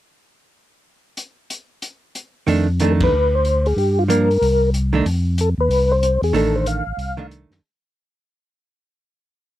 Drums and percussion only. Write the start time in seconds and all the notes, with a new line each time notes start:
1.17 closed hi-hat
1.50 closed hi-hat
1.82 closed hi-hat
2.15 closed hi-hat
2.47 open hi-hat
2.79 closed hi-hat
3.00 kick, ride
3.45 closed hi-hat
3.66 open hi-hat
3.78 open hi-hat
4.10 closed hi-hat
4.31 open hi-hat
4.42 open hi-hat
4.74 closed hi-hat
5.06 open hi-hat
5.38 closed hi-hat
5.71 open hi-hat
6.03 closed hi-hat
6.23 open hi-hat
6.34 open hi-hat
6.66 closed hi-hat
6.99 open hi-hat
7.31 closed hi-hat
7.51 snare, open hi-hat